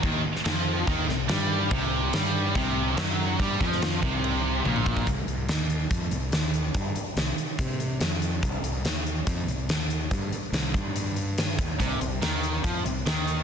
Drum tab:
CC |x---x---x---x---|x---x---x---x---|x---x---x-------|----------------|
HH |----------------|----------------|----------------|x-x-x-x-x-x-x-x-|
SD |---oo-----o-o---|----o-------o---|---oo-----------|----o-------o---|
T1 |----------------|----------------|------------o---|----------------|
T2 |----------------|----------------|-------------o--|----------------|
BD |o-------o-------|o-------o-------|o-o---o-------oo|o-------o-------|

CC |----------------|----------------|----------------|----------------|
HH |x-x-x-x-x-x-x-x-|x-x-x-x-x-x-x-x-|x-x-x-x-x-x-x-x-|x-x-x-x-x-x-x-x-|
SD |----o-------o---|----o-------o---|----o-------o---|----o-------o---|
T1 |----------------|----------------|----------------|----------------|
T2 |----------------|----------------|----------------|----------------|
BD |o-------o-------|o-------o-------|o-----o-------o-|o-------o-------|